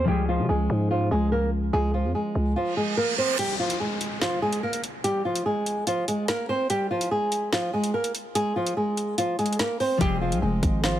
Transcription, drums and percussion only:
3.39 closed hi-hat loud
3.39 crash loud
3.70 closed hi-hat medium
4.01 closed hi-hat medium
4.22 snare loud
4.53 closed hi-hat medium
4.73 closed hi-hat medium
4.84 closed hi-hat medium
5.04 closed hi-hat loud
5.35 closed hi-hat medium
5.66 closed hi-hat medium
5.87 closed hi-hat medium
6.08 closed hi-hat medium
6.28 snare loud
6.28 closed hi-hat medium
6.70 closed hi-hat loud
7.01 closed hi-hat medium
7.32 closed hi-hat medium
7.53 snare loud
7.84 closed hi-hat medium
8.04 closed hi-hat medium
8.15 closed hi-hat medium
8.35 closed hi-hat loud
8.67 closed hi-hat medium
8.97 closed hi-hat medium
9.18 closed hi-hat medium
9.39 closed hi-hat soft
9.46 closed hi-hat medium
9.53 closed hi-hat medium
9.59 snare loud
9.59 closed hi-hat medium
9.80 open hi-hat medium
10.01 kick loud
10.01 closed hi-hat loud
10.32 closed hi-hat medium
10.63 kick medium
10.63 closed hi-hat medium
10.84 snare loud

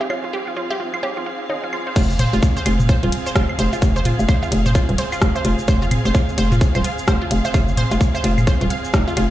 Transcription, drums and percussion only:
0.01 low woodblock medium
0.10 high bongo medium
0.10 high woodblock medium
0.57 high bongo soft
0.70 low woodblock medium
0.94 high woodblock medium
1.03 high bongo medium
1.50 high bongo medium
1.73 high woodblock medium
1.96 kick loud
1.96 crash loud
1.96 high bongo medium
1.96 shaker medium
2.10 shaker soft
2.19 closed hi-hat loud
2.19 mid tom medium
2.33 shaker soft
2.43 kick loud
2.43 high bongo soft
2.43 shaker medium
2.57 shaker soft
2.66 closed hi-hat loud
2.66 high woodblock medium
2.80 mid tom medium
2.80 shaker soft
2.89 kick loud
2.89 high bongo medium
2.89 shaker medium
3.03 closed hi-hat soft
3.12 closed hi-hat medium
3.26 shaker soft
3.36 kick loud
3.36 cross-stick loud
3.36 high bongo medium
3.36 shaker medium
3.49 high woodblock medium
3.59 closed hi-hat medium
3.59 low woodblock medium
3.73 low woodblock medium
3.73 shaker soft
3.82 kick loud
3.82 high bongo soft
3.82 shaker medium
3.96 shaker soft
4.05 closed hi-hat loud
4.05 mid tom medium
4.19 low woodblock medium
4.19 shaker soft
4.29 kick loud
4.29 high bongo medium
4.29 high woodblock medium
4.29 shaker medium
4.43 low woodblock medium
4.43 shaker soft
4.52 closed hi-hat medium
4.66 mid tom medium
4.66 shaker soft
4.75 kick loud
4.75 high bongo medium
4.75 shaker medium
4.89 closed hi-hat soft
4.98 closed hi-hat medium
5.12 high woodblock medium
5.12 shaker soft
5.22 kick loud
5.22 cross-stick loud
5.22 high bongo soft
5.22 shaker medium
5.36 low woodblock medium
5.45 closed hi-hat loud
5.59 shaker soft
5.68 kick loud
5.68 high bongo medium
5.68 shaker medium
5.82 shaker soft
5.91 closed hi-hat loud
5.91 mid tom medium
5.91 high woodblock medium
6.05 shaker soft
6.14 kick loud
6.14 high bongo medium
6.14 shaker medium
6.29 shaker soft
6.38 closed hi-hat medium
6.52 mid tom medium
6.52 shaker soft
6.61 kick loud
6.61 high bongo soft
6.61 shaker medium
6.75 closed hi-hat soft
6.75 high woodblock medium
6.84 closed hi-hat loud
6.98 shaker soft
7.08 kick loud
7.08 cross-stick loud
7.08 high bongo medium
7.08 shaker soft
7.31 closed hi-hat loud
7.31 low woodblock medium
7.45 low woodblock medium
7.45 shaker soft
7.54 kick loud
7.54 high bongo medium
7.54 high woodblock medium
7.54 shaker medium
7.68 shaker soft
7.77 closed hi-hat medium
7.77 mid tom medium
7.91 closed hi-hat soft
7.91 low woodblock medium
7.91 shaker soft
8.01 kick loud
8.01 high bongo soft
8.01 shaker medium
8.14 low woodblock medium
8.14 shaker soft
8.24 closed hi-hat medium
8.38 mid tom medium
8.38 high woodblock medium
8.38 shaker soft
8.47 kick loud
8.47 high bongo medium
8.47 shaker medium
8.61 closed hi-hat soft
8.70 closed hi-hat medium
8.84 shaker soft
8.94 kick loud
8.94 cross-stick loud
8.94 high bongo medium
8.94 shaker medium
9.08 low woodblock medium
9.08 shaker soft
9.17 closed hi-hat medium
9.17 high woodblock medium

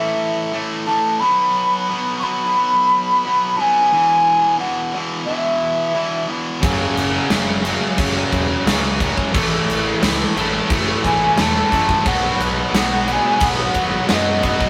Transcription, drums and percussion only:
6.63 kick loud
6.63 crash medium
6.97 crash medium
7.30 snare loud
7.30 crash medium
7.65 crash medium
7.98 kick loud
7.98 crash loud
8.33 kick medium
8.33 crash medium
8.67 snare loud
8.67 crash loud
9.00 kick medium
9.00 crash medium
9.18 kick medium
9.35 kick loud
9.35 crash loud
9.70 crash medium
10.03 snare loud
10.03 crash loud
10.37 crash medium
10.70 kick loud
10.70 crash medium
11.05 kick medium
11.05 crash medium
11.38 snare loud
11.38 crash medium
11.72 kick medium
11.72 crash medium
11.89 kick medium
11.89 snare soft
12.06 kick loud
12.06 crash medium
12.40 crash medium
12.75 snare loud
12.75 crash loud
13.08 crash medium
13.40 kick loud
13.40 crash medium
13.74 kick medium
13.74 crash medium
14.09 snare loud
14.09 crash medium
14.43 kick medium
14.43 crash medium
14.61 kick medium
14.61 snare soft

